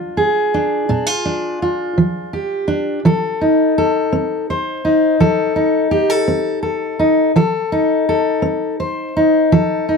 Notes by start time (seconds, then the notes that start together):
Already playing: F3 D4 F4
0.17 G#4
0.54 D4
0.89 A#2 D4
1.06 F4
1.25 D4
1.62 F4
1.98 F3
2.33 G4
2.68 D4
3.05 F3 A4
3.41 D#4
3.78 A4
4.12 C4
4.50 C5
4.85 D#4
5.20 F3 A4
5.56 D#4
5.91 G4
6.10 A4
6.28 C4
6.63 A4
6.99 D#4
7.36 F3 A4
7.72 D#4
8.09 A4
8.42 C4
8.80 C5
9.17 D#4
9.52 F3 A4
9.89 D#4